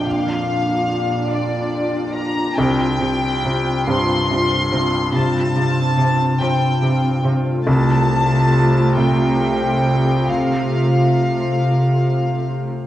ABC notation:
X:1
M:6/8
L:1/16
Q:3/8=47
K:F
V:1 name="Violin section"
f6 d4 b2 | g6 c'6 | a6 g4 z2 | a6 g6 |
f8- f2 z2 |]
V:2 name="Viola section"
[DF]12 | [CF]2 [CF]2 [CF]2 [CF]2 [CF]2 [CF]2 | [CF]2 [CF]2 [CF]2 [CF]2 [CF]2 [CF]2 | [A,F]12 |
[A,F]8- [A,F]3 z |]
V:3 name="Harp"
[B,,DFGB] F, F D G D F D G D F D | C, C F C G C F C G C F C | C, G, F C G C F C G C F C | C, C F C A C F C A C F C |
C, A, F C A C F C A C F C |]
V:4 name="Cello section" clef=bass
B,,12 | C,2 C,2 C,2 C,2 C,2 C,2 | C,2 C,2 C,2 C,2 C,2 C,2 | C,12- |
C,8- C,3 z |]
V:5 name="Grand piano" clef=bass
F,,12 | C,,6 G,,6- | G,,12 | C,,6 C,6- |
C,12 |]